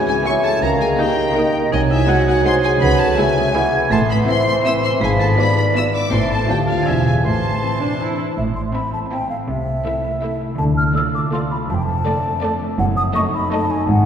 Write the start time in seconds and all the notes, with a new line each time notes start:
Already playing: C#3 E3 G#3 C#4 E4 G#4 C#5 G#5
0.07 G#4 E5 G#5
0.24 G#3 E4 C#5 E5 C#6
0.43 A4 A5
0.62 C#2 C#3 D#3 A#4 F5 A#5
0.80 A#3 G#4 G#5
0.99 A#3 D#4 G4 D#5 G5
1.17 D#5
1.35 A#3 D#4 A#4 D#5
1.54 D#4
1.72 C2 C3 F#3 D#4 D#5 G#5
1.91 G#3 E4 E5
2.08 G#3 D#4 F#4 F#5
2.27 F#4 D#5 F#5
2.45 G#3 D#4 G#4 C5 F#5 C6
2.64 F#4 G#4 G#5
2.80 C#2 C#3 B4 F#5 B5
3.00 C#4 A4 A5
3.18 G#3 E4 G#4 E5 G#5
3.36 E5
3.54 E3 G#3 E4 C#5 E5 F#5
3.73 G#4
3.91 A1 A2 A4 E5 A5 C6
4.10 C4 B4 B5
4.28 C4 E4 C5 E5 C6
4.46 C5 C6
4.64 C4 E4 E5 E6
4.83 C4 C5 C6
5.01 G#1 G#2 F3 G#4 F5 G#5 B5
5.19 B3 A4 A5
5.38 B3 F4 B4 D5 B5
5.57 B4 D5 B5
5.74 B3 F4 B4 D5 E5 E6
5.93 F4 D5 D6
6.11 A1 A2 E3 C4 E4 C5 E5 A5 C6
6.30 C4 E4 A4 A5
6.49 D2 D3 F3 D4 F4 G4 F5 G5 A5
6.67 D4 F4 F5
6.86 E1 E2 E3 D4 E4 F4 E5 G#5
7.04 D4 F4 G#4 G#5
7.24 A1 A2 E3 A4 C5 A5 C6
7.43 A3
7.62 C4 E4 A5
7.81 D4 C5
8.00 E4 A4 A5
8.18 E4
8.37 A1 A2 E5
8.56 A3 C6
8.74 C4 E4 E5 B5
8.93 A4 A5
9.11 C4 E4 E5 G5
9.30 A3 F5
9.48 C2 C3 E5
9.67 A3
9.85 A3 E4 E5
10.04 A4
10.22 A3 E4 E5
10.41 A3
10.58 D2 D3 A5
10.77 A3 F6
10.95 A3 F4 D5 E6
11.14 A4 D6
11.33 A3 F4 D5 C6
11.51 A3 B5
11.70 F1 F2 A5
11.75 G5
11.83 A5
11.88 A3
12.06 A3 D4 A4 D5
12.25 A4
12.43 A3 D4 A4 D5
12.61 A3
12.79 F#1 F#2 F#5
12.97 A3 D#6
13.15 A3 D#4 A4 D#5 C#6
13.34 A4 B5
13.52 A3 D#4 A4 D#5 A5
13.70 A3 G#5
13.88 G#1 G#2 F#5